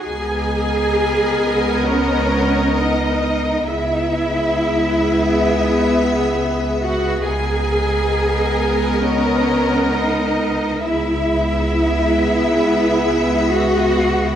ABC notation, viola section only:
X:1
M:4/4
L:1/8
Q:1/4=67
K:G#m
V:1 name="Viola section"
[B,A]8 | [B,G]8 | [B,A]8 | [B,G]8 |]